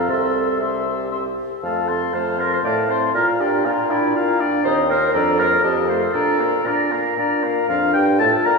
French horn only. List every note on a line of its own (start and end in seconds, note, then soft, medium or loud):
0.09 0.59 C4 soft
0.60 1.11 C4 soft
1.11 1.23 C4 soft
1.63 1.91 A3 soft
1.89 2.15 C4 soft
2.13 2.40 A3 soft
2.38 2.63 C4 soft
2.64 2.90 A3 soft
2.88 3.14 C4 soft
3.14 3.42 F4 medium
3.40 3.67 D4 soft
3.66 3.92 F4 medium
3.91 4.15 D4 medium
4.16 4.42 F4 medium
4.41 4.65 D4 medium
4.65 4.91 C4 medium
4.90 5.14 A#3 medium
5.15 5.41 D4 medium
5.39 5.64 A#3 medium
5.64 5.90 C4 medium
5.88 6.13 A3 soft
6.14 6.42 D4 soft
6.41 6.68 A#3 soft
6.66 6.94 D4 soft
6.92 7.18 A#3 soft
7.19 7.46 D4 soft
7.45 7.69 A#3 soft
7.70 8.22 D4 medium
8.20 8.56 F4 medium